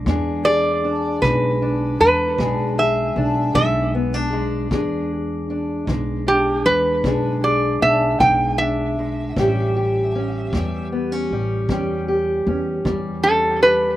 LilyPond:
<<
  \new Staff \with { instrumentName = "Resonator guitar played with a steel bar" } { \time 12/8 \key e \mixolydian \tempo 4. = 52 r8 d''4 b'4 b'4 e''4 e''8 r4 | r2 g'8 b'4 d''8 e''8 g''8 e''4~ | e''2 r2. a'8 b'8 | }
  \new Staff \with { instrumentName = "Steel-string acoustic guitar" } { \time 12/8 \key e \mixolydian << { <gis d' gis'>8 gis'8 d'8 gis8 d'8 gis8 <gis d' gis'>8 gis'8 d'8 gis8 b16 d'16 gis8 | <gis d' gis'>4 d'8 gis8 d'8 gis8 <gis d' gis'>8 gis'8 d'8 gis8 d'8 gis8 | <g cis' g'>8 g'8 cis'8 g8 b16 cis'16 g8 <g cis' g'>8 g'8 cis'8 g8 cis'8 g8 | } \\ { e,4 r8 e4 r8 e,4 r8 e4 r8 | e,4 r8 e4 r8 e,4 r8 e4 r8 | a,4 r8 e4 r8 a,4 r8 e4 r8 | } >> }
  \new Staff \with { instrumentName = "Upright bass" } { \clef bass \time 12/8 \key e \mixolydian e,4. b,,4 e,8 b,,4 b,,8 b,,4. | e,4. b,,4 e,8 b,,4 b,,8 b,,4. | a,,4. e,4 a,,8 e,4 e,8 e,4. | }
  \new DrumStaff \with { instrumentName = "Drums" } \drummode { \time 12/8 bd4. bd4. bd4. bd4. | bd4. bd4. bd4. bd4. | bd4. bd4. bd4. bd4. | }
>>